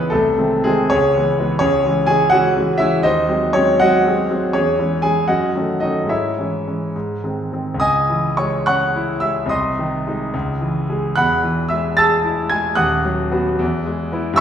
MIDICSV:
0, 0, Header, 1, 2, 480
1, 0, Start_track
1, 0, Key_signature, 4, "minor"
1, 0, Tempo, 514139
1, 111, Time_signature, 6, 3, 24, 8
1, 1075, Tempo, 471328
1, 2995, Tempo, 500835
1, 5395, Tempo, 564972
1, 9235, Tempo, 548446
1, 11155, Tempo, 535236
1, 13083, End_track
2, 0, Start_track
2, 0, Title_t, "Grand piano"
2, 0, Program_c, 0, 0
2, 0, Control_c, 0, 64, 127
2, 0, Note_on_c, 0, 37, 49
2, 0, Note_on_c, 0, 52, 40
2, 0, Note_on_c, 0, 56, 38
2, 0, Note_on_c, 0, 59, 58
2, 0, Note_on_c, 0, 61, 54
2, 0, Note_on_c, 0, 63, 56
2, 0, Note_on_c, 0, 64, 56
2, 0, Note_on_c, 0, 68, 51
2, 0, Note_on_c, 0, 71, 77
2, 0, Note_on_c, 0, 73, 75
2, 0, Note_on_c, 0, 75, 80
2, 93, Note_on_c, 0, 69, 77
2, 94, Note_off_c, 0, 59, 0
2, 95, Note_off_c, 0, 52, 0
2, 95, Note_off_c, 0, 56, 0
2, 104, Note_off_c, 0, 71, 0
2, 111, Note_on_c, 0, 57, 63
2, 118, Note_on_c, 0, 36, 57
2, 128, Note_off_c, 0, 63, 0
2, 128, Control_c, 0, 64, 0
2, 130, Note_off_c, 0, 37, 0
2, 131, Note_off_c, 0, 75, 0
2, 132, Note_off_c, 0, 64, 0
2, 133, Note_off_c, 0, 73, 0
2, 135, Note_off_c, 0, 68, 0
2, 137, Note_off_c, 0, 61, 0
2, 281, Control_c, 0, 64, 127
2, 350, Note_off_c, 0, 36, 0
2, 351, Note_on_c, 0, 51, 41
2, 356, Note_on_c, 0, 56, 40
2, 359, Note_on_c, 0, 60, 49
2, 573, Note_off_c, 0, 57, 0
2, 581, Note_off_c, 0, 51, 0
2, 583, Note_off_c, 0, 56, 0
2, 585, Note_off_c, 0, 60, 0
2, 597, Note_on_c, 0, 68, 79
2, 599, Note_off_c, 0, 69, 0
2, 607, Note_on_c, 0, 56, 65
2, 611, Note_on_c, 0, 51, 45
2, 616, Note_on_c, 0, 60, 51
2, 828, Note_off_c, 0, 51, 0
2, 830, Note_off_c, 0, 60, 0
2, 833, Note_off_c, 0, 56, 0
2, 838, Note_on_c, 0, 73, 92
2, 843, Note_off_c, 0, 68, 0
2, 852, Note_on_c, 0, 37, 58
2, 852, Note_on_c, 0, 61, 68
2, 857, Note_on_c, 0, 68, 66
2, 864, Control_c, 0, 64, 0
2, 1001, Control_c, 0, 64, 127
2, 1069, Note_off_c, 0, 37, 0
2, 1085, Note_on_c, 0, 52, 42
2, 1085, Note_on_c, 0, 56, 42
2, 1087, Note_on_c, 0, 59, 47
2, 1295, Note_off_c, 0, 52, 0
2, 1295, Note_off_c, 0, 56, 0
2, 1296, Note_off_c, 0, 59, 0
2, 1315, Note_on_c, 0, 52, 47
2, 1316, Note_on_c, 0, 59, 45
2, 1320, Note_on_c, 0, 56, 46
2, 1507, Note_off_c, 0, 73, 0
2, 1512, Note_off_c, 0, 61, 0
2, 1515, Note_off_c, 0, 68, 0
2, 1522, Note_on_c, 0, 73, 93
2, 1529, Note_off_c, 0, 52, 0
2, 1530, Note_off_c, 0, 59, 0
2, 1532, Note_off_c, 0, 56, 0
2, 1538, Note_on_c, 0, 61, 73
2, 1540, Note_on_c, 0, 68, 69
2, 1543, Note_on_c, 0, 37, 58
2, 1568, Control_c, 0, 64, 0
2, 1686, Control_c, 0, 64, 127
2, 1779, Note_off_c, 0, 37, 0
2, 1783, Note_off_c, 0, 61, 0
2, 1785, Note_on_c, 0, 52, 49
2, 1794, Note_on_c, 0, 56, 48
2, 1798, Note_on_c, 0, 61, 46
2, 1989, Note_off_c, 0, 68, 0
2, 2000, Note_off_c, 0, 52, 0
2, 2006, Note_on_c, 0, 80, 92
2, 2007, Note_off_c, 0, 56, 0
2, 2009, Note_off_c, 0, 61, 0
2, 2013, Note_on_c, 0, 68, 74
2, 2014, Note_off_c, 0, 73, 0
2, 2015, Note_on_c, 0, 52, 46
2, 2022, Note_on_c, 0, 56, 43
2, 2025, Note_on_c, 0, 61, 49
2, 2235, Note_off_c, 0, 52, 0
2, 2239, Note_off_c, 0, 56, 0
2, 2241, Note_off_c, 0, 61, 0
2, 2241, Note_on_c, 0, 78, 103
2, 2242, Note_off_c, 0, 68, 0
2, 2255, Note_off_c, 0, 80, 0
2, 2260, Note_on_c, 0, 52, 48
2, 2261, Note_on_c, 0, 66, 70
2, 2263, Note_on_c, 0, 56, 50
2, 2271, Note_on_c, 0, 61, 51
2, 2479, Note_off_c, 0, 52, 0
2, 2481, Note_off_c, 0, 56, 0
2, 2486, Note_off_c, 0, 61, 0
2, 2512, Note_on_c, 0, 52, 47
2, 2515, Note_on_c, 0, 61, 43
2, 2516, Note_on_c, 0, 56, 47
2, 2714, Note_off_c, 0, 66, 0
2, 2729, Note_off_c, 0, 52, 0
2, 2729, Note_on_c, 0, 76, 85
2, 2731, Note_off_c, 0, 56, 0
2, 2731, Note_off_c, 0, 61, 0
2, 2738, Note_off_c, 0, 78, 0
2, 2745, Note_on_c, 0, 64, 67
2, 2751, Note_on_c, 0, 61, 45
2, 2753, Note_on_c, 0, 52, 46
2, 2754, Note_on_c, 0, 56, 46
2, 2971, Note_off_c, 0, 61, 0
2, 2973, Note_off_c, 0, 52, 0
2, 2973, Note_off_c, 0, 56, 0
2, 2976, Note_off_c, 0, 64, 0
2, 2985, Note_off_c, 0, 76, 0
2, 2989, Note_on_c, 0, 75, 89
2, 2996, Note_on_c, 0, 63, 66
2, 2997, Note_on_c, 0, 72, 68
2, 3007, Note_on_c, 0, 39, 56
2, 3011, Control_c, 0, 64, 0
2, 3173, Control_c, 0, 64, 127
2, 3230, Note_on_c, 0, 54, 47
2, 3231, Note_off_c, 0, 39, 0
2, 3233, Note_on_c, 0, 56, 46
2, 3242, Note_on_c, 0, 60, 46
2, 3449, Note_off_c, 0, 63, 0
2, 3450, Note_off_c, 0, 72, 0
2, 3456, Note_off_c, 0, 54, 0
2, 3458, Note_off_c, 0, 56, 0
2, 3463, Note_off_c, 0, 60, 0
2, 3469, Note_on_c, 0, 73, 88
2, 3476, Note_on_c, 0, 61, 66
2, 3480, Note_off_c, 0, 75, 0
2, 3484, Note_on_c, 0, 54, 43
2, 3488, Note_on_c, 0, 56, 44
2, 3491, Note_on_c, 0, 60, 45
2, 3711, Note_off_c, 0, 54, 0
2, 3713, Note_off_c, 0, 56, 0
2, 3715, Note_off_c, 0, 60, 0
2, 3715, Note_off_c, 0, 61, 0
2, 3722, Note_on_c, 0, 78, 95
2, 3729, Note_off_c, 0, 73, 0
2, 3735, Note_on_c, 0, 66, 70
2, 3736, Note_on_c, 0, 75, 69
2, 3744, Note_on_c, 0, 54, 46
2, 3745, Note_on_c, 0, 56, 43
2, 3745, Note_on_c, 0, 60, 46
2, 3958, Note_off_c, 0, 54, 0
2, 3959, Note_off_c, 0, 56, 0
2, 3959, Note_off_c, 0, 60, 0
2, 3983, Note_on_c, 0, 54, 37
2, 3987, Note_on_c, 0, 56, 44
2, 3989, Note_on_c, 0, 60, 46
2, 4190, Note_off_c, 0, 54, 0
2, 4192, Note_off_c, 0, 56, 0
2, 4193, Note_off_c, 0, 60, 0
2, 4211, Note_on_c, 0, 56, 41
2, 4212, Note_on_c, 0, 54, 42
2, 4216, Note_on_c, 0, 60, 44
2, 4398, Note_off_c, 0, 66, 0
2, 4399, Note_off_c, 0, 75, 0
2, 4415, Note_off_c, 0, 56, 0
2, 4416, Note_off_c, 0, 54, 0
2, 4417, Note_off_c, 0, 60, 0
2, 4430, Note_off_c, 0, 78, 0
2, 4430, Note_on_c, 0, 73, 80
2, 4436, Note_on_c, 0, 61, 62
2, 4439, Note_on_c, 0, 68, 60
2, 4445, Note_on_c, 0, 40, 53
2, 4453, Control_c, 0, 64, 0
2, 4606, Control_c, 0, 64, 127
2, 4661, Note_off_c, 0, 40, 0
2, 4670, Note_off_c, 0, 61, 0
2, 4672, Note_on_c, 0, 52, 42
2, 4676, Note_on_c, 0, 56, 43
2, 4684, Note_on_c, 0, 61, 41
2, 4868, Note_off_c, 0, 68, 0
2, 4880, Note_off_c, 0, 52, 0
2, 4882, Note_off_c, 0, 56, 0
2, 4886, Note_off_c, 0, 61, 0
2, 4895, Note_off_c, 0, 73, 0
2, 4897, Note_on_c, 0, 80, 79
2, 4903, Note_on_c, 0, 68, 62
2, 4912, Note_on_c, 0, 52, 38
2, 4913, Note_on_c, 0, 61, 39
2, 4915, Note_on_c, 0, 56, 35
2, 5127, Note_off_c, 0, 52, 0
2, 5127, Note_off_c, 0, 61, 0
2, 5128, Note_off_c, 0, 56, 0
2, 5129, Note_off_c, 0, 68, 0
2, 5141, Note_on_c, 0, 78, 73
2, 5143, Note_off_c, 0, 80, 0
2, 5147, Note_on_c, 0, 75, 60
2, 5150, Note_on_c, 0, 66, 56
2, 5151, Note_on_c, 0, 42, 53
2, 5162, Control_c, 0, 64, 0
2, 5337, Control_c, 0, 64, 127
2, 5393, Note_off_c, 0, 42, 0
2, 5407, Note_on_c, 0, 51, 36
2, 5408, Note_on_c, 0, 57, 34
2, 5415, Note_on_c, 0, 61, 37
2, 5596, Note_off_c, 0, 75, 0
2, 5598, Note_off_c, 0, 66, 0
2, 5609, Note_off_c, 0, 51, 0
2, 5610, Note_off_c, 0, 57, 0
2, 5614, Note_off_c, 0, 61, 0
2, 5617, Note_on_c, 0, 75, 68
2, 5625, Note_off_c, 0, 78, 0
2, 5631, Note_on_c, 0, 63, 49
2, 5636, Note_on_c, 0, 51, 34
2, 5638, Note_on_c, 0, 57, 33
2, 5644, Note_on_c, 0, 61, 37
2, 5817, Note_on_c, 0, 44, 44
2, 5844, Note_off_c, 0, 51, 0
2, 5845, Note_off_c, 0, 57, 0
2, 5848, Note_off_c, 0, 61, 0
2, 5848, Note_off_c, 0, 63, 0
2, 5857, Note_off_c, 0, 75, 0
2, 5864, Note_on_c, 0, 76, 62
2, 5867, Note_on_c, 0, 73, 49
2, 5869, Note_on_c, 0, 64, 47
2, 5879, Control_c, 0, 64, 0
2, 6041, Control_c, 0, 64, 127
2, 6073, Note_off_c, 0, 44, 0
2, 6113, Note_on_c, 0, 52, 35
2, 6118, Note_on_c, 0, 61, 34
2, 6119, Note_on_c, 0, 56, 33
2, 6327, Note_off_c, 0, 52, 0
2, 6329, Note_off_c, 0, 61, 0
2, 6330, Note_off_c, 0, 56, 0
2, 6357, Note_on_c, 0, 56, 32
2, 6361, Note_on_c, 0, 52, 33
2, 6361, Note_on_c, 0, 61, 34
2, 6554, Note_off_c, 0, 73, 0
2, 6555, Note_off_c, 0, 64, 0
2, 6568, Note_off_c, 0, 56, 0
2, 6570, Note_off_c, 0, 52, 0
2, 6570, Note_off_c, 0, 61, 0
2, 6586, Note_off_c, 0, 76, 0
2, 6596, Note_on_c, 0, 44, 45
2, 6599, Control_c, 0, 64, 0
2, 6747, Control_c, 0, 64, 127
2, 6825, Note_off_c, 0, 44, 0
2, 6836, Note_on_c, 0, 51, 31
2, 6839, Note_on_c, 0, 56, 31
2, 6839, Note_on_c, 0, 60, 34
2, 7053, Note_off_c, 0, 51, 0
2, 7054, Note_off_c, 0, 56, 0
2, 7054, Note_off_c, 0, 60, 0
2, 7077, Note_on_c, 0, 51, 31
2, 7079, Note_on_c, 0, 56, 31
2, 7087, Note_on_c, 0, 60, 36
2, 7267, Note_on_c, 0, 37, 60
2, 7297, Note_off_c, 0, 51, 0
2, 7298, Note_off_c, 0, 56, 0
2, 7303, Note_off_c, 0, 60, 0
2, 7312, Note_on_c, 0, 87, 96
2, 7321, Note_on_c, 0, 75, 65
2, 7322, Note_on_c, 0, 80, 73
2, 7333, Control_c, 0, 64, 0
2, 7491, Control_c, 0, 64, 127
2, 7566, Note_on_c, 0, 52, 48
2, 7781, Note_off_c, 0, 75, 0
2, 7782, Note_off_c, 0, 80, 0
2, 7800, Note_on_c, 0, 85, 70
2, 7807, Note_on_c, 0, 73, 54
2, 7811, Note_off_c, 0, 87, 0
2, 7817, Note_on_c, 0, 56, 49
2, 7961, Note_off_c, 0, 52, 0
2, 8037, Note_off_c, 0, 73, 0
2, 8039, Note_off_c, 0, 85, 0
2, 8046, Note_on_c, 0, 90, 95
2, 8052, Note_on_c, 0, 85, 76
2, 8057, Note_on_c, 0, 78, 71
2, 8063, Note_on_c, 0, 61, 51
2, 8202, Note_off_c, 0, 56, 0
2, 8300, Note_on_c, 0, 64, 52
2, 8436, Note_off_c, 0, 61, 0
2, 8491, Note_off_c, 0, 85, 0
2, 8494, Note_off_c, 0, 78, 0
2, 8506, Note_on_c, 0, 88, 75
2, 8518, Note_on_c, 0, 76, 56
2, 8521, Note_off_c, 0, 90, 0
2, 8521, Note_on_c, 0, 56, 46
2, 8671, Note_off_c, 0, 64, 0
2, 8703, Note_off_c, 0, 37, 0
2, 8723, Note_on_c, 0, 36, 60
2, 8742, Note_off_c, 0, 76, 0
2, 8752, Note_off_c, 0, 88, 0
2, 8753, Note_on_c, 0, 87, 82
2, 8760, Note_off_c, 0, 56, 0
2, 8760, Note_on_c, 0, 75, 64
2, 8760, Note_on_c, 0, 84, 63
2, 8781, Control_c, 0, 64, 0
2, 8921, Control_c, 0, 64, 127
2, 9006, Note_on_c, 0, 51, 50
2, 9243, Note_on_c, 0, 56, 47
2, 9255, Note_on_c, 0, 63, 53
2, 9382, Note_off_c, 0, 51, 0
2, 9430, Note_off_c, 0, 36, 0
2, 9454, Note_off_c, 0, 56, 0
2, 9460, Note_off_c, 0, 63, 0
2, 9478, Note_on_c, 0, 37, 64
2, 9491, Control_c, 0, 64, 0
2, 9634, Control_c, 0, 64, 127
2, 9716, Note_on_c, 0, 52, 44
2, 9915, Note_off_c, 0, 84, 0
2, 9916, Note_off_c, 0, 75, 0
2, 9947, Note_off_c, 0, 87, 0
2, 9965, Note_on_c, 0, 56, 44
2, 9968, Note_on_c, 0, 68, 47
2, 10103, Note_off_c, 0, 52, 0
2, 10179, Note_off_c, 0, 37, 0
2, 10180, Note_off_c, 0, 56, 0
2, 10182, Note_off_c, 0, 68, 0
2, 10193, Note_on_c, 0, 90, 101
2, 10201, Note_on_c, 0, 28, 60
2, 10206, Note_on_c, 0, 78, 77
2, 10208, Note_on_c, 0, 83, 73
2, 10210, Note_on_c, 0, 40, 59
2, 10214, Control_c, 0, 64, 0
2, 10382, Control_c, 0, 64, 127
2, 10435, Note_on_c, 0, 52, 50
2, 10649, Note_off_c, 0, 78, 0
2, 10650, Note_off_c, 0, 83, 0
2, 10657, Note_on_c, 0, 88, 74
2, 10668, Note_on_c, 0, 76, 60
2, 10674, Note_on_c, 0, 56, 51
2, 10675, Note_off_c, 0, 90, 0
2, 10818, Note_off_c, 0, 52, 0
2, 10894, Note_off_c, 0, 76, 0
2, 10903, Note_off_c, 0, 88, 0
2, 10903, Note_on_c, 0, 93, 113
2, 10915, Note_on_c, 0, 81, 85
2, 10916, Note_on_c, 0, 88, 84
2, 10918, Note_on_c, 0, 68, 60
2, 11058, Note_off_c, 0, 56, 0
2, 11145, Note_on_c, 0, 64, 50
2, 11302, Note_off_c, 0, 68, 0
2, 11362, Note_off_c, 0, 81, 0
2, 11363, Note_off_c, 0, 88, 0
2, 11371, Note_on_c, 0, 92, 78
2, 11385, Note_on_c, 0, 80, 62
2, 11387, Note_on_c, 0, 56, 54
2, 11391, Note_off_c, 0, 93, 0
2, 11536, Note_off_c, 0, 64, 0
2, 11602, Note_off_c, 0, 28, 0
2, 11603, Note_on_c, 0, 90, 96
2, 11607, Note_off_c, 0, 40, 0
2, 11607, Note_on_c, 0, 27, 67
2, 11609, Note_on_c, 0, 87, 72
2, 11613, Note_off_c, 0, 80, 0
2, 11614, Note_on_c, 0, 39, 64
2, 11615, Note_on_c, 0, 78, 67
2, 11623, Note_off_c, 0, 92, 0
2, 11631, Note_off_c, 0, 56, 0
2, 11653, Control_c, 0, 64, 0
2, 11815, Control_c, 0, 64, 127
2, 11870, Note_on_c, 0, 54, 52
2, 12107, Note_on_c, 0, 59, 53
2, 12110, Note_on_c, 0, 66, 59
2, 12266, Note_off_c, 0, 54, 0
2, 12329, Note_off_c, 0, 27, 0
2, 12332, Note_off_c, 0, 39, 0
2, 12333, Note_off_c, 0, 59, 0
2, 12335, Note_off_c, 0, 66, 0
2, 12353, Note_on_c, 0, 40, 76
2, 12379, Control_c, 0, 64, 0
2, 12549, Control_c, 0, 64, 127
2, 12595, Note_on_c, 0, 56, 50
2, 12791, Note_off_c, 0, 87, 0
2, 12794, Note_off_c, 0, 78, 0
2, 12824, Note_off_c, 0, 90, 0
2, 12831, Note_on_c, 0, 59, 54
2, 12837, Note_on_c, 0, 64, 57
2, 12977, Note_off_c, 0, 56, 0
2, 13019, Note_on_c, 0, 43, 72
2, 13044, Note_on_c, 0, 88, 117
2, 13047, Note_off_c, 0, 59, 0
2, 13048, Note_off_c, 0, 40, 0
2, 13051, Note_off_c, 0, 64, 0
2, 13054, Note_on_c, 0, 31, 66
2, 13083, Note_off_c, 0, 31, 0
2, 13083, Note_off_c, 0, 43, 0
2, 13083, Note_off_c, 0, 88, 0
2, 13083, End_track
0, 0, End_of_file